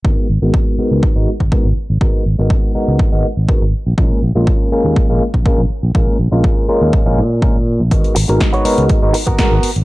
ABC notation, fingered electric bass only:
X:1
M:4/4
L:1/16
Q:1/4=122
K:G#dor
V:1 name="Fingered electric bass" clef=bass
G,,, z G,,, G,,, z3 C,, z G,,, z G,,, z G,,, z G,,, | z2 G,,, G,,, z3 C,, z G,,, z G,,, z G,,, z A,,, | A,,, z A,,, A,,, z3 D,, z A,,, z A,,, z A,,, z A,,, | A,,, z A,,, A,,, z3 D,, z A,,, A,,4- A,, A,,, |
G,,, z G,,, G,,, z3 C,, z G,,, z G,,, z G,,, z G,,, |]